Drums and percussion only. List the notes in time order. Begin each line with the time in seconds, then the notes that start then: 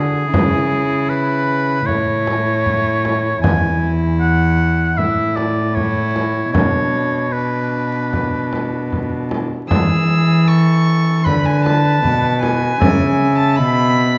0.34 frame drum
1.88 frame drum
2.27 frame drum
2.66 frame drum
3.05 frame drum
3.44 frame drum
4.98 frame drum
5.37 frame drum
5.77 frame drum
6.16 frame drum
6.54 frame drum
8.13 frame drum
8.53 frame drum
8.92 frame drum
9.31 frame drum
9.71 frame drum
11.26 frame drum
11.66 frame drum
12.04 frame drum
12.43 frame drum
12.81 frame drum